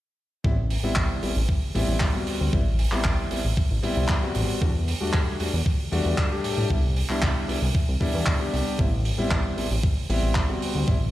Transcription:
0.44 A1 G3 B3 C4 E4, kick
0.70 open hi-hat
0.83 A1 G3 B3 C4 E4
0.96 A1, kick, clap
1.22 A1 G3 B3 C4 E4, open hi-hat
1.36 A1
1.49 kick
1.75 A1 G3 B3 C4 E4, open hi-hat
1.88 A1
2.00 kick, clap
2.14 G3 B3 C4 F#4
2.27 D2, open hi-hat
2.40 D2
2.53 A1 G3 B3 C4 E4, kick
2.79 open hi-hat
2.92 A1 G3 B3 C4 E4, clap
3.04 A1, kick, clap
3.31 A1 G3 B3 C4 E4, open hi-hat
3.45 A1
3.57 kick
3.71 A1
3.83 G3 B3 C4 E4, open hi-hat
3.97 C2
4.08 kick, clap
4.22 G3 B3 C4 F#4
4.35 A1, open hi-hat
4.61 E2 G3 A3 D4 F#4, kick
4.88 open hi-hat
5.01 E2 G3 A3 D4 F#4
5.13 E2, kick, clap
5.39 E2 G3 A3 D4 F#4, open hi-hat
5.54 E2
5.66 kick
5.92 E2 G3 A3 D4 F#4, open hi-hat
6.06 E2
6.18 kick, clap
6.31 G3 A3 D4 G4
6.44 A2, open hi-hat
6.58 A2
6.70 C2 G3 B3 D4 E4, kick
6.96 open hi-hat
7.09 C2 G3 B3 D4 E4, clap
7.22 C2, kick, clap
7.48 C2 G3 B3 D4 E4, open hi-hat
7.62 C2
7.75 kick
7.88 C2
8.00 G3 B3 D4 E4, kick, open hi-hat
8.14 E2
8.26 kick, clap
8.40 G3 B3 D4 G4
8.53 C2, open hi-hat
8.78 A1 G3 B3 C4 E4, kick
9.05 open hi-hat
9.18 A1 G3 B3 C4 E4
9.31 A1, kick, clap
9.57 A1 G3 B3 C4 E4, open hi-hat
9.71 A1
9.83 kick
10.09 A1 G3 B3 C4 E4, open hi-hat
10.23 A1
10.35 kick, clap
10.48 G3 B3 C4 F#4
10.62 D2, open hi-hat
10.75 D2
10.87 A1 G3 B3 C4 E4, kick

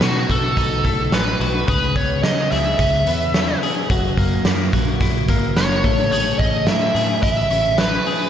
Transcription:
Already playing: B2 A3 F#4
0.01 B2 D#4 F#4, snare, closed hi-hat
0.29 B2 F#4 A4, kick, closed hi-hat
0.57 B1 D#4, kick, closed hi-hat
0.85 B1 A3, kick, closed hi-hat
1.12 A1 D#4 B4, snare, closed hi-hat
1.40 B1 F#4, closed hi-hat
1.68 C#2 C#3 G#4 B4, kick, closed hi-hat
1.96 C#2 B3 C#5, kick, closed hi-hat
2.23 C#3 C#4 D#5, snare, closed hi-hat
2.51 C#2 G#4 E5, snare, closed hi-hat
2.79 C#2 C#4, kick, closed hi-hat
3.07 E2 B3, closed hi-hat
3.34 C#4, snare, closed hi-hat
3.63 G#4, closed hi-hat
3.90 F#1 F#2 F#4, kick, closed hi-hat
4.17 F#1 A#3, kick, closed hi-hat
4.45 F#2 E4, snare, closed hi-hat
4.73 A#1 F#4, kick, closed hi-hat
5.01 A#1 E4, kick, closed hi-hat
5.28 G#1 A#3, kick, closed hi-hat
5.56 F#1 E4 C#5, snare, closed hi-hat
5.84 A1 A3, kick, open hi-hat
6.12 A3 G#4 C#5, closed hi-hat
6.39 A1 C#4 D#5, kick, closed hi-hat
6.67 A2 E4 E5, snare, closed hi-hat
6.94 A2 G#4, snare, closed hi-hat
7.23 A1 E4 E5, kick, closed hi-hat
7.50 A1 C#4, closed hi-hat
7.78 E4 B4, snare, closed hi-hat
8.06 G#4, open hi-hat

